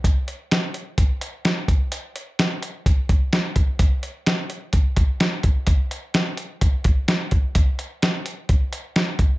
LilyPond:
\new DrumStaff \with { instrumentName = "Drums" } \drummode { \time 4/4 \tempo 4 = 128 <hh bd>8 hh8 <hh sn>8 hh8 <hh bd>8 hh8 <hh sn>8 <hh bd>8 | hh8 hh8 <hh sn>8 hh8 <hh bd>8 <hh bd>8 <hh sn>8 <hh bd>8 | <hh bd>8 hh8 <hh sn>8 hh8 <hh bd>8 <hh bd>8 <hh sn>8 <hh bd>8 | <hh bd>8 hh8 <hh sn>8 hh8 <hh bd>8 <hh bd>8 <hh sn>8 <hh bd>8 |
<hh bd>8 hh8 <hh sn>8 hh8 <hh bd>8 hh8 <hh sn>8 <hh bd>8 | }